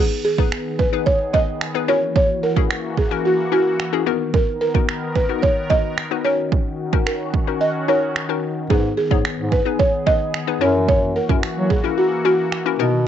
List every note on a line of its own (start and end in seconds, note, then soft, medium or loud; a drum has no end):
0.00 1.87 D#3 medium
0.00 0.28 B3 medium
0.00 1.87 B3 medium
0.00 0.28 D#4 medium
0.00 0.23 G#4 medium
0.00 0.28 G#4 medium
0.00 1.87 G#4 medium
0.00 0.28 B4 medium
0.25 0.81 G#4 medium
0.38 0.79 B3 medium
0.38 0.79 D#4 medium
0.38 0.80 G#4 medium
0.38 0.80 B4 medium
0.38 kick medium
0.52 finger snap loud
0.79 1.07 B4 medium
0.79 kick medium
0.93 1.24 B3 medium
0.93 1.24 D#4 medium
0.93 1.24 G#4 medium
0.93 1.24 B4 medium
1.06 1.19 C#5 loud
1.06 kick medium
1.33 1.65 B3 medium
1.33 1.65 D#4 medium
1.33 1.65 G#4 medium
1.33 1.65 B4 medium
1.33 1.84 D#5 loud
1.33 kick medium
1.61 finger snap loud
1.74 1.88 B3 medium
1.74 1.88 D#4 medium
1.74 1.88 G#4 medium
1.74 1.89 B4 medium
1.88 4.04 E3 medium
1.88 4.04 A#3 medium
1.88 2.43 C#4 medium
1.88 2.43 E4 medium
1.88 2.43 F#4 medium
1.88 4.04 F#4 medium
1.88 2.43 A#4 medium
1.88 2.14 C#5 loud
2.16 2.28 C#5 loud
2.16 kick loud
2.43 2.99 A#4 medium
2.56 2.98 C#4 medium
2.56 2.98 E4 medium
2.56 2.98 F#4 medium
2.56 2.98 G#4 medium
2.56 kick medium
2.71 finger snap loud
2.97 3.26 G#4 medium
2.97 kick medium
3.11 3.42 C#4 medium
3.11 3.42 E4 medium
3.11 3.42 F#4 medium
3.11 3.42 A#4 medium
3.25 3.50 F#4 medium
3.52 3.83 C#4 medium
3.52 3.83 E4 medium
3.52 3.83 F#4 medium
3.52 4.03 F#4 medium
3.52 3.83 A#4 medium
3.80 finger snap medium
3.93 4.06 C#4 medium
3.93 4.07 E4 medium
3.93 4.05 F#4 medium
3.93 4.07 G#4 medium
4.06 6.23 D#3 medium
4.06 4.61 B3 medium
4.06 6.23 B3 medium
4.06 4.61 D#4 medium
4.06 4.61 F#4 medium
4.06 4.61 A#4 medium
4.06 6.23 A#4 medium
4.34 4.60 A#4 medium
4.34 kick loud
4.61 5.17 A#4 medium
4.74 5.16 B3 medium
4.74 5.16 D#4 medium
4.74 5.16 F#4 medium
4.74 5.16 A#4 medium
4.74 kick medium
4.89 finger snap loud
5.15 5.41 B4 medium
5.15 kick medium
5.29 5.60 B3 medium
5.29 5.60 D#4 medium
5.29 5.60 F#4 medium
5.29 5.60 A#4 medium
5.42 5.71 C#5 medium
5.42 kick medium
5.70 6.01 B3 medium
5.70 6.01 D#4 medium
5.70 6.01 F#4 medium
5.70 6.01 A#4 medium
5.70 6.26 D#5 loud
5.70 kick medium
5.98 finger snap loud
6.11 6.25 B3 medium
6.11 6.23 D#4 medium
6.11 6.24 F#4 medium
6.11 6.25 B4 medium
6.24 10.57 D#3 medium
6.24 6.79 C#4 medium
6.24 8.68 C#4 medium
6.24 6.79 D#4 medium
6.24 6.79 F#4 medium
6.24 8.68 F#4 medium
6.24 6.79 A#4 medium
6.24 7.02 C#5 loud
6.52 kick loud
6.93 7.34 C#4 medium
6.93 7.34 D#4 medium
6.93 7.34 F#4 medium
6.93 7.34 A#4 medium
6.93 kick medium
7.06 7.57 A#4 medium
7.06 finger snap loud
7.34 kick medium
7.47 7.78 C#4 medium
7.47 7.78 D#4 medium
7.47 7.78 F#4 medium
7.47 7.78 A#4 medium
7.61 7.73 D#5 medium
7.88 8.19 C#4 medium
7.88 8.19 D#4 medium
7.88 8.19 F#4 medium
7.88 8.19 A#4 medium
7.88 8.39 C#5 medium
8.16 finger snap loud
8.29 8.60 C#4 medium
8.29 8.60 D#4 medium
8.29 8.60 F#4 medium
8.29 8.60 A#4 medium
8.70 8.92 G#2 loud
8.70 9.01 B3 medium
8.70 10.59 B3 medium
8.70 9.01 D#4 medium
8.70 8.82 G#4 medium
8.70 9.01 G#4 medium
8.70 10.59 G#4 medium
8.70 9.01 B4 medium
8.70 kick loud
8.97 9.54 G#4 medium
9.11 9.22 G#2 medium
9.11 9.52 B3 medium
9.11 9.52 D#4 medium
9.11 9.52 G#4 medium
9.11 9.52 C#5 medium
9.11 kick medium
9.25 finger snap loud
9.38 9.60 G#2 medium
9.52 9.80 B4 medium
9.52 kick medium
9.65 9.96 B3 medium
9.65 9.96 D#4 medium
9.65 9.97 G#4 medium
9.65 9.97 B4 medium
9.79 10.05 C#5 loud
9.79 kick medium
10.06 10.37 B3 medium
10.06 10.37 D#4 medium
10.06 10.37 G#4 medium
10.06 10.38 B4 medium
10.06 10.57 D#5 loud
10.06 kick medium
10.34 finger snap medium
10.47 10.61 B3 medium
10.47 10.61 D#4 medium
10.47 10.61 G#4 medium
10.47 10.61 B4 medium
10.61 11.15 F#2 loud
10.61 12.77 E3 medium
10.61 12.77 A#3 medium
10.61 11.15 C#4 medium
10.61 11.16 E4 medium
10.61 11.16 F#4 medium
10.61 12.77 F#4 medium
10.61 11.16 A#4 medium
10.61 10.73 C#5 medium
10.88 11.14 C#5 loud
10.88 kick loud
11.16 11.72 A#4 medium
11.29 11.40 F#2 medium
11.29 11.70 C#4 medium
11.29 11.70 E4 medium
11.29 11.71 F#4 medium
11.29 11.71 A#4 medium
11.29 kick medium
11.43 finger snap loud
11.57 11.78 F#3 medium
11.70 11.98 G#4 medium
11.70 kick medium
11.84 12.15 C#4 medium
11.84 12.15 E4 medium
11.84 12.15 F#4 medium
11.84 12.15 A#4 medium
11.98 12.23 F#4 medium
12.25 12.56 C#4 medium
12.25 12.56 E4 medium
12.25 12.76 F#4 medium
12.25 12.56 F#4 medium
12.25 12.56 A#4 medium
12.52 finger snap medium
12.66 12.79 C#4 medium
12.66 12.79 E4 medium
12.66 12.78 F#4 medium
12.66 12.79 A#4 medium
12.79 13.08 B2 medium
12.79 13.08 D#3 medium
12.79 13.08 B3 medium
12.79 13.08 D#4 medium
12.79 13.08 F#4 medium
12.79 13.08 A#4 medium
12.79 13.08 A#5 medium